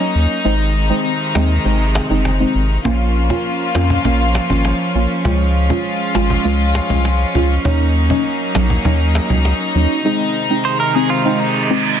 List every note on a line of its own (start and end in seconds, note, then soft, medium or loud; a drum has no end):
0.00 0.20 F#3 medium
0.00 0.43 F#3 medium
0.00 0.43 A#3 medium
0.00 0.41 C#4 medium
0.00 0.20 C#4 medium
0.00 2.81 D#4 medium
0.00 0.20 D#4 medium
0.15 0.27 D#2 loud
0.44 0.92 G#1 loud
0.44 2.83 C3 medium
0.44 2.83 D#3 medium
0.44 0.86 G#3 medium
0.44 2.83 G#3 medium
0.44 0.86 C4 medium
0.44 0.87 D#4 loud
0.90 1.10 G#3 medium
0.90 1.10 C4 medium
0.90 1.10 D#4 medium
1.35 1.58 D#2 medium
1.35 1.55 G#3 medium
1.35 1.55 C4 medium
1.35 1.55 D#4 medium
1.35 cajon slap loud
1.35 cajon slap medium
1.65 2.00 G#1 loud
1.65 1.85 G#3 medium
1.65 1.85 C4 medium
1.65 1.85 D#4 loud
1.95 cajon slap loud
1.95 cajon slap medium
2.10 2.45 F#1 medium
2.10 2.30 G#3 medium
2.10 2.30 C4 medium
2.10 2.30 D#4 medium
2.25 cajon slap medium
2.40 2.60 G#3 medium
2.40 2.60 C4 medium
2.40 2.60 D#4 medium
2.55 2.78 G#1 loud
2.85 3.32 A#1 loud
2.85 7.61 F3 medium
2.85 3.26 A#3 loud
2.85 5.23 A#3 medium
2.85 10.01 C#4 medium
2.85 3.26 C#4 medium
2.85 5.23 F4 medium
2.85 3.27 F4 loud
2.85 cajon bass loud
3.15 cajon slap soft
3.30 3.71 A#3 medium
3.30 3.71 C#4 medium
3.30 3.72 F4 medium
3.30 cajon bass medium
3.45 cajon slap soft
3.75 3.98 F2 medium
3.75 4.02 A#3 medium
3.75 4.03 C#4 medium
3.75 4.03 F4 medium
3.75 cajon slap loud
3.75 cajon slap medium
3.90 cajon bass loud
4.05 4.40 A#1 loud
4.05 4.25 A#3 medium
4.05 4.25 C#4 medium
4.05 4.25 F4 loud
4.05 cajon bass loud
4.35 cajon slap loud
4.35 cajon slap medium
4.50 4.73 G#1 loud
4.50 4.91 A#3 medium
4.50 4.92 C#4 medium
4.50 4.92 F4 medium
4.50 cajon bass loud
4.65 cajon slap medium
4.95 5.07 A#1 medium
4.95 5.23 A#3 medium
4.95 5.23 C#4 medium
4.95 5.23 F4 medium
4.95 cajon slap soft
5.25 5.71 C#2 loud
5.25 5.66 G#3 medium
5.25 7.63 G#3 medium
5.25 5.67 C#4 medium
5.25 7.63 F4 medium
5.25 5.67 F4 loud
5.25 cajon bass loud
5.55 cajon slap soft
5.70 6.11 G#3 medium
5.70 6.11 C#4 medium
5.70 6.12 F4 medium
5.70 cajon bass medium
5.85 cajon slap soft
6.15 6.38 G#1 medium
6.15 6.43 G#3 medium
6.15 6.43 C#4 medium
6.15 6.43 F4 medium
6.15 cajon slap loud
6.15 cajon slap medium
6.30 cajon bass loud
6.45 6.80 C#2 loud
6.45 6.65 G#3 loud
6.45 6.65 C#4 medium
6.45 6.65 F4 loud
6.45 cajon slap soft
6.75 cajon slap loud
6.75 cajon slap medium
6.90 7.25 C2 medium
6.90 7.10 G#3 medium
6.90 7.10 C#4 medium
6.90 7.10 F4 medium
6.90 cajon bass medium
7.05 cajon slap medium
7.34 7.58 C#2 loud
7.34 7.54 G#3 medium
7.34 7.55 C#4 medium
7.34 7.55 F4 medium
7.34 cajon bass medium
7.65 8.12 D#2 loud
7.65 8.06 F#3 medium
7.65 10.03 F#3 medium
7.65 10.03 A#3 medium
7.65 8.06 C#4 medium
7.65 8.07 D#4 loud
7.65 12.00 D#4 medium
7.65 cajon bass loud
7.95 cajon slap soft
8.10 8.51 F#3 medium
8.10 8.51 C#4 medium
8.10 8.52 D#4 medium
8.10 cajon bass medium
8.25 cajon slap soft
8.55 8.78 A#1 medium
8.55 8.83 F#3 medium
8.55 8.83 C#4 medium
8.55 8.83 D#4 medium
8.55 cajon slap loud
8.55 cajon slap medium
8.70 cajon bass loud
8.85 9.20 D#2 loud
8.85 9.05 F#3 loud
8.85 9.05 C#4 medium
8.85 9.05 D#4 loud
8.85 cajon bass loud
9.15 cajon slap loud
9.30 9.53 C#2 medium
9.30 9.71 F#3 medium
9.30 9.72 C#4 medium
9.30 9.72 D#4 medium
9.30 cajon bass medium
9.45 cajon slap loud
9.75 9.87 D#2 loud
9.75 10.03 F#3 medium
9.75 10.03 C#4 medium
9.75 10.03 D#4 medium
9.75 cajon slap soft
10.05 12.00 C3 medium
10.05 12.00 D#3 medium
10.05 10.46 G#3 loud
10.05 12.00 G#3 medium
10.05 10.46 C4 medium
10.05 10.47 D#4 loud
10.50 10.91 G#3 medium
10.50 10.92 C4 medium
10.50 10.92 D#4 medium
10.65 10.79 C5 medium
10.80 10.95 A#4 medium
10.95 11.23 G#3 medium
10.95 11.23 C4 medium
10.95 11.23 D#4 medium
10.95 11.09 G#4 medium
11.10 11.40 F4 medium
11.25 11.45 G#3 loud
11.25 11.45 C4 medium
11.25 11.45 D#4 loud
11.25 reverse cymbal medium
11.40 12.00 D#4 medium
11.70 12.00 G#3 medium
11.70 12.00 C4 medium
11.70 12.00 D#4 medium